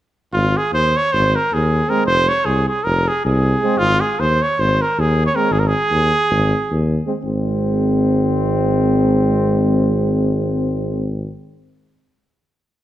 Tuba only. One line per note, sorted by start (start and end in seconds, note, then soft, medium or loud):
0.33 0.55 G#1 medium
0.72 0.94 D#2 medium
1.13 1.35 G#1 medium
1.53 1.82 D#2 medium
2.05 2.27 F1 medium
2.45 2.67 C2 medium
2.85 3.07 F1 medium
3.25 3.54 C2 medium
3.78 4.00 G#1 medium
4.18 4.40 D#2 medium
4.58 4.80 G#1 medium
4.98 5.27 D#2 medium
5.50 5.72 G#1 loud
5.91 6.13 D#2 medium
6.31 6.52 G#1 medium
6.70 6.99 D#2 medium
7.23 11.27 G#1 medium